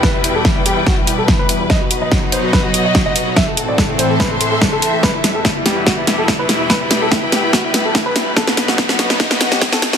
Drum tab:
HH |--x---x---x---x-|--x---x---x---x-|--x---x---x---x-|--x---x---x---x-|
SD |o---o---o---o---|o---o---o---o---|o---o---o---o---|o-o-o-o-o-o-o-o-|
BD |o---o---o---o---|o---o---o---o---|o---o---o---o---|o---o---o---o---|

HH |--x---x---x---x-|--x---x---x---x-|
SD |o-o-o-o-o-o-o-o-|oooooooooooooooo|
BD |o---o---o---o---|o---o---o---o---|